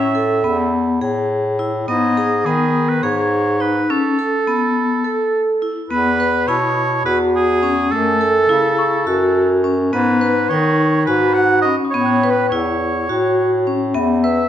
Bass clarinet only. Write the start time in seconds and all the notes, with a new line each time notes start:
Already playing: A2
0.44 E2
1.01 A2
1.88 G#2
2.46 D#3
3.03 G#2
5.90 E2
6.48 B2
7.05 E2
7.92 F#2
8.48 C#3
9.06 F#2
9.93 G#2
10.50 D#3
11.08 G#2
11.95 A2
12.52 E2
13.09 A2
13.95 E2